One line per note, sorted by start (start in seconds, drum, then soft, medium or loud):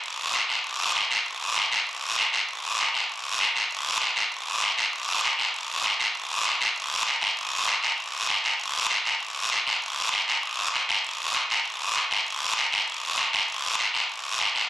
0.04 long guiro medium
0.34 short guiro medium
0.49 short guiro medium
0.64 long guiro medium
0.95 short guiro medium
1.11 short guiro medium
1.26 long guiro medium
1.56 short guiro medium
1.72 short guiro medium
1.87 long guiro medium
2.18 short guiro medium
2.33 short guiro medium
2.48 long guiro medium
2.79 short guiro medium
2.94 short guiro medium
3.09 long guiro medium
3.40 short guiro medium
3.56 short guiro medium
3.71 long guiro medium
4.01 short guiro medium
4.16 short guiro medium
4.32 long guiro medium
4.62 short guiro medium
4.78 short guiro medium
4.93 long guiro medium
5.24 short guiro medium
5.39 short guiro medium
5.54 long guiro medium
5.84 short guiro medium
6.00 short guiro medium
6.15 long guiro medium
6.46 short guiro medium
6.61 short guiro medium
6.76 long guiro medium
7.07 short guiro medium
7.21 short guiro medium
7.37 long guiro medium
7.67 short guiro medium
7.83 short guiro medium
7.98 long guiro medium
8.29 short guiro medium
8.44 short guiro medium
8.60 long guiro medium
8.90 short guiro medium
9.05 short guiro medium
9.20 long guiro medium
9.51 short guiro medium
9.67 short guiro medium
9.82 long guiro medium
10.12 short guiro medium
10.28 short guiro medium
10.43 long guiro medium
10.74 short guiro medium
10.89 short guiro medium
11.05 long guiro medium
11.35 short guiro medium
11.50 short guiro medium
11.65 long guiro medium
11.96 short guiro medium
12.11 short guiro medium
12.26 long guiro medium
12.57 short guiro medium
12.72 short guiro medium
12.88 long guiro medium
13.18 short guiro medium
13.33 short guiro medium
13.48 long guiro medium
13.79 short guiro medium
13.94 short guiro medium
14.09 long guiro medium
14.40 short guiro medium
14.55 short guiro medium